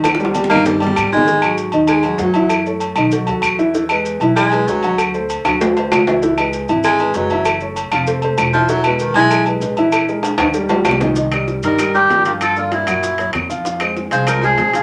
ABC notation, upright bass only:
X:1
M:4/4
L:1/8
Q:1/4=194
K:Eb
V:1 name="Upright bass" clef=bass
E,,3 G,,3 A,,2- | [K:G#m] _A,,3 D,,3 F,,2- | F,,3 B,,,2 D,, E,,2- | E,,3 B,,,3 =D,,2- |
=D,,3 D,,3 C,,2- | C,,3 G,,,3 F,,,2- | F,,,3 ^E,,,3 =E,,,2- | E,,,3 B,,,3 A,,,2- |
A,,,3 D,,3 ^B,,,2- | [K:Cm] ^B,,,3 G,,3 G,,2- | G,,3 ^F,,3 =F,,2- | F,,3 C,,3 B,,,2 |]